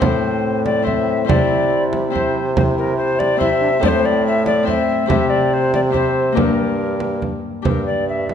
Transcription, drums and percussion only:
0.02 frame drum
0.66 frame drum
0.87 frame drum
1.29 frame drum
1.93 frame drum
2.15 frame drum
2.57 frame drum
3.20 frame drum
3.41 frame drum
3.83 frame drum
4.46 frame drum
4.67 frame drum
5.10 frame drum
5.74 frame drum
5.94 frame drum
6.37 frame drum
7.00 frame drum
7.22 frame drum
7.65 frame drum
8.29 frame drum

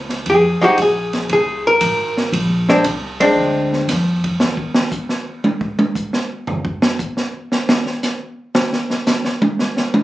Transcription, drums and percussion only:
0.09 snare, ride
0.26 ride
0.78 hi-hat pedal, ride
1.13 snare, ride
1.29 ride
1.81 hi-hat pedal, ride
2.17 snare
2.33 ride
2.69 snare
2.84 hi-hat pedal, ride
3.20 ride
3.73 snare
3.89 snare, hi-hat pedal, ride
4.24 kick, ride
4.40 snare
4.57 kick
4.74 snare
4.91 kick, hi-hat pedal
5.09 snare
5.44 high tom
5.61 kick
5.79 high tom
5.95 kick, hi-hat pedal
6.13 snare
6.47 floor tom
6.65 kick
6.82 snare
6.99 kick, hi-hat pedal
7.17 snare
7.52 snare
7.69 snare
7.86 snare
8.03 snare, hi-hat pedal
8.55 snare
8.73 snare
8.90 snare
9.07 snare, hi-hat pedal
9.25 snare
9.42 high tom
9.59 snare
9.77 snare
9.94 high tom

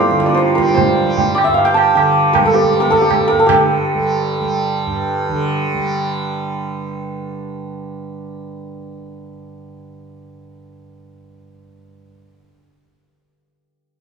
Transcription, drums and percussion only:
0.00 tabla te
0.11 tabla te
0.20 tabla ke
0.29 tabla te
0.38 tabla te
0.48 tabla te
0.58 tabla ke
0.68 tabla te
0.78 tabla tin, tabla ge
1.18 tabla tin, tabla ge
1.38 tabla na
1.58 tabla tin
1.77 tabla na
1.97 tabla na
2.35 tabla na, tabla ge
2.54 tabla te
2.64 tabla ge
2.73 tabla te
2.82 tabla te
2.92 tabla ke
3.02 tabla te
3.11 tabla na, tabla ge
3.30 tabla te
3.49 tabla na, tabla ge

